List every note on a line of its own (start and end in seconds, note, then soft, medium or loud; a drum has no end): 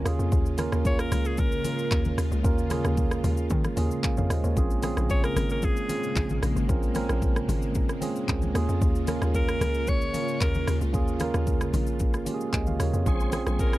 0.04 0.19 D#2 loud
0.04 4.53 C#3 medium
0.04 13.02 G#3 medium
0.04 0.48 A#3 loud
0.04 0.48 C#4 medium
0.04 4.53 F4 loud
0.04 0.49 F4 medium
0.04 0.49 G#4 loud
0.04 cross-stick loud
0.04 open hi-hat medium
0.04 shaker loud
0.19 0.31 F2 loud
0.19 shaker medium
0.32 0.70 D#2 loud
0.32 kick loud
0.32 low conga medium
0.32 shaker medium
0.46 shaker medium
0.57 1.43 A#3 loud
0.57 1.44 C#4 medium
0.57 1.44 F4 medium
0.57 1.44 A#4 loud
0.57 cross-stick loud
0.57 open hi-hat medium
0.57 high conga medium
0.57 shaker loud
0.72 1.10 D#2 loud
0.72 cross-stick loud
0.72 shaker medium
0.85 0.99 C#5 loud
0.85 kick loud
0.85 low conga medium
0.85 shaker medium
0.99 1.28 A#4 loud
0.99 cross-stick loud
0.99 shaker medium
1.12 1.62 C#2 loud
1.12 cross-stick loud
1.12 open hi-hat medium
1.12 high conga medium
1.12 low conga medium
1.12 shaker loud
1.25 1.41 G#4 medium
1.25 shaker medium
1.38 2.18 A#4 medium
1.38 kick loud
1.38 low conga medium
1.38 shaker medium
1.52 shaker soft
1.63 2.28 A#3 medium
1.63 2.29 C#4 medium
1.63 2.29 F4 medium
1.63 2.29 A#4 medium
1.63 open hi-hat medium
1.63 high conga medium
1.63 shaker loud
1.79 shaker medium
1.91 2.17 D#2 loud
1.91 kick loud
1.91 clap medium
1.91 shaker medium
2.05 high conga medium
2.05 shaker soft
2.18 2.31 D#2 medium
2.18 cross-stick loud
2.18 open hi-hat medium
2.18 shaker medium
2.32 2.44 C#2 loud
2.32 shaker medium
2.43 2.83 D#2 loud
2.43 2.65 A#3 medium
2.43 2.66 C#4 medium
2.43 2.66 F4 medium
2.43 2.66 A#4 loud
2.43 kick loud
2.43 low conga medium
2.43 shaker medium
2.58 shaker medium
2.70 3.55 A#3 loud
2.70 3.56 C#4 medium
2.70 3.56 F4 medium
2.70 3.57 G#4 loud
2.70 cross-stick loud
2.70 open hi-hat medium
2.70 high conga medium
2.70 shaker loud
2.85 3.22 D#2 loud
2.85 cross-stick loud
2.85 shaker medium
2.97 kick loud
2.97 low conga medium
2.97 shaker medium
3.11 cross-stick loud
3.11 shaker medium
3.24 3.49 D#2 loud
3.24 open hi-hat medium
3.24 high conga medium
3.24 low conga medium
3.24 shaker medium
3.37 shaker medium
3.50 3.64 D#3 loud
3.50 kick loud
3.50 low conga medium
3.50 shaker medium
3.64 cross-stick medium
3.64 high conga medium
3.64 shaker medium
3.76 3.90 D#2 loud
3.76 4.41 A#3 medium
3.76 4.41 C#4 medium
3.76 4.41 F4 medium
3.76 4.42 G#4 medium
3.76 open hi-hat medium
3.76 high conga medium
3.76 shaker loud
3.91 shaker medium
4.04 4.16 F5 medium
4.04 4.17 G#5 medium
4.04 kick loud
4.04 clap loud
4.04 shaker medium
4.17 4.29 F2 medium
4.17 4.30 C#5 medium
4.17 4.30 F5 medium
4.17 high conga medium
4.17 shaker soft
4.30 4.43 D#2 medium
4.30 4.44 C5 medium
4.30 4.43 D#5 medium
4.30 cross-stick loud
4.30 open hi-hat medium
4.30 shaker medium
4.44 4.56 D#2 loud
4.44 4.70 A#4 medium
4.44 4.69 C#5 medium
4.44 shaker medium
4.55 4.95 A#1 loud
4.55 8.51 C#3 medium
4.55 8.51 A#3 loud
4.55 4.78 C4 medium
4.55 4.78 C#4 medium
4.55 4.78 F4 medium
4.55 4.79 G#4 loud
4.55 kick loud
4.55 low conga medium
4.55 shaker medium
4.71 shaker medium
4.82 5.68 C4 medium
4.82 5.68 C#4 medium
4.82 5.69 F4 medium
4.82 5.69 G#4 loud
4.82 cross-stick loud
4.82 open hi-hat medium
4.82 high conga medium
4.82 shaker medium
4.97 5.34 A#1 loud
4.97 cross-stick loud
4.97 shaker medium
5.09 5.23 C#5 loud
5.09 kick loud
5.09 low conga medium
5.09 shaker medium
5.24 5.49 A#4 loud
5.24 cross-stick loud
5.24 shaker medium
5.36 5.87 G#1 medium
5.36 cross-stick loud
5.36 open hi-hat medium
5.36 high conga medium
5.36 low conga medium
5.36 shaker loud
5.50 5.66 A#4 medium
5.50 shaker medium
5.62 6.43 G#4 medium
5.62 kick loud
5.62 low conga medium
5.62 shaker medium
5.77 shaker medium
5.88 6.53 C4 medium
5.88 6.53 C#4 medium
5.88 6.54 F4 medium
5.88 6.54 G#4 medium
5.88 open hi-hat medium
5.88 high conga medium
5.88 shaker loud
6.04 shaker medium
6.16 6.41 A#1 medium
6.16 kick loud
6.16 clap loud
6.16 shaker medium
6.29 high conga medium
6.29 shaker soft
6.42 6.56 A#1 medium
6.42 cross-stick loud
6.42 open hi-hat medium
6.42 shaker medium
6.56 6.68 G#1 medium
6.56 shaker medium
6.68 7.07 A#1 loud
6.68 6.90 C4 medium
6.68 6.90 C#4 medium
6.68 6.91 F4 medium
6.68 6.91 A#4 loud
6.68 kick loud
6.68 low conga medium
6.68 shaker medium
6.83 shaker medium
6.94 7.80 C4 loud
6.94 7.81 C#4 medium
6.94 7.81 F4 medium
6.94 7.81 A#4 loud
6.94 cross-stick medium
6.94 open hi-hat medium
6.94 high conga medium
6.94 shaker loud
7.09 7.47 A#1 loud
7.09 cross-stick loud
7.09 shaker medium
7.22 kick loud
7.22 low conga medium
7.22 shaker medium
7.36 cross-stick loud
7.36 shaker medium
7.49 7.99 G#1 medium
7.49 open hi-hat medium
7.49 high conga medium
7.49 low conga medium
7.49 shaker loud
7.62 shaker medium
7.75 kick loud
7.75 low conga medium
7.75 shaker medium
7.89 cross-stick medium
7.89 shaker soft
8.01 8.54 C4 medium
8.01 8.53 C#4 medium
8.01 8.54 F4 medium
8.01 8.55 G#4 loud
8.01 open hi-hat medium
8.01 high conga medium
8.01 shaker loud
8.16 shaker medium
8.29 8.54 C#2 medium
8.29 kick loud
8.29 clap medium
8.29 shaker medium
8.42 high conga medium
8.42 shaker soft
8.54 8.68 D#2 loud
8.54 13.02 C#3 medium
8.54 8.97 A#3 loud
8.54 8.98 C#4 medium
8.54 13.02 F4 medium
8.54 8.98 F4 medium
8.54 8.99 G#4 loud
8.54 cross-stick loud
8.54 open hi-hat medium
8.54 shaker loud
8.69 8.81 F2 medium
8.69 shaker medium
8.81 9.20 D#2 loud
8.81 kick loud
8.81 low conga medium
8.81 shaker medium
8.95 shaker medium
9.07 9.93 A#3 loud
9.07 9.93 C#4 medium
9.07 9.94 F4 medium
9.07 9.94 A#4 loud
9.07 cross-stick loud
9.07 open hi-hat medium
9.07 high conga medium
9.07 shaker medium
9.22 9.59 D#2 loud
9.22 cross-stick loud
9.22 shaker medium
9.34 9.90 A#4 loud
9.34 kick loud
9.34 low conga medium
9.34 shaker medium
9.49 cross-stick loud
9.49 shaker medium
9.61 10.12 C#2 loud
9.61 cross-stick loud
9.61 open hi-hat medium
9.61 high conga medium
9.61 low conga medium
9.61 shaker loud
9.74 shaker medium
9.87 10.41 C#5 loud
9.87 kick loud
9.87 low conga medium
9.87 shaker medium
10.01 shaker soft
10.13 10.78 A#3 medium
10.13 10.78 C#4 medium
10.13 10.79 F4 medium
10.13 10.79 A#4 medium
10.13 open hi-hat medium
10.13 high conga medium
10.13 shaker loud
10.28 shaker medium
10.41 10.66 D#2 medium
10.41 10.79 A#4 medium
10.41 kick loud
10.41 clap medium
10.41 shaker medium
10.54 high conga medium
10.54 shaker soft
10.67 10.80 D#2 loud
10.67 cross-stick loud
10.67 open hi-hat medium
10.67 shaker loud
10.81 10.95 C#2 medium
10.81 shaker medium
10.93 11.32 D#2 loud
10.93 11.15 A#3 medium
10.93 11.15 C#4 medium
10.93 11.16 F4 medium
10.93 11.16 G#4 loud
10.93 kick loud
10.93 low conga medium
10.93 shaker medium
11.08 shaker medium
11.19 12.05 A#3 medium
11.19 12.05 C#4 medium
11.19 12.06 F4 medium
11.19 12.06 A#4 loud
11.19 cross-stick loud
11.19 open hi-hat medium
11.19 high conga medium
11.19 shaker loud
11.34 11.72 D#2 loud
11.34 cross-stick loud
11.34 shaker medium
11.47 kick loud
11.47 shaker medium
11.61 cross-stick loud
11.61 shaker medium
11.74 12.24 A#1 loud
11.74 open hi-hat medium
11.74 high conga medium
11.74 low conga medium
11.74 shaker loud
11.87 shaker medium
11.99 kick loud
11.99 low conga medium
11.99 shaker medium
12.14 cross-stick medium
12.14 shaker medium
12.25 12.90 A#3 medium
12.25 12.91 C#4 medium
12.25 12.53 F4 medium
12.25 12.34 G4 medium
12.25 open hi-hat medium
12.25 high conga medium
12.25 shaker loud
12.34 12.57 G#4 medium
12.41 shaker medium
12.53 12.78 C#2 loud
12.53 13.03 D#5 medium
12.53 12.66 F5 medium
12.53 12.66 G#5 medium
12.53 kick loud
12.53 clap medium
12.53 shaker medium
12.67 12.79 C#5 medium
12.67 12.79 F5 medium
12.67 high conga medium
12.67 shaker soft
12.80 12.93 D#2 medium
12.80 12.93 A#4 medium
12.80 12.93 C#5 medium
12.80 cross-stick loud
12.80 open hi-hat medium
12.80 shaker medium
12.94 13.06 F2 medium
12.94 13.06 F4 medium
12.94 13.06 G#4 medium
12.94 shaker medium
13.05 13.45 A#1 loud
13.05 13.78 C#3 medium
13.05 13.78 G#3 medium
13.05 13.78 A#3 loud
13.05 13.27 C4 medium
13.05 13.28 C#4 medium
13.05 13.43 C#4 loud
13.05 13.28 F4 medium
13.05 13.43 G#4 medium
13.05 13.28 G#4 loud
13.05 13.43 C5 loud
13.05 kick loud
13.05 low conga medium
13.05 shaker medium
13.20 shaker medium
13.32 13.78 C4 medium
13.32 13.78 C#4 medium
13.32 13.78 F4 medium
13.32 13.78 G#4 loud
13.32 cross-stick loud
13.32 open hi-hat medium
13.32 high conga medium
13.32 shaker loud
13.46 13.78 A#1 loud
13.46 13.78 C#4 medium
13.46 13.78 G#4 medium
13.46 13.78 C5 medium
13.46 cross-stick loud
13.46 shaker medium
13.59 13.78 A#4 loud
13.59 kick loud
13.59 low conga medium
13.59 shaker medium
13.73 cross-stick loud
13.73 shaker medium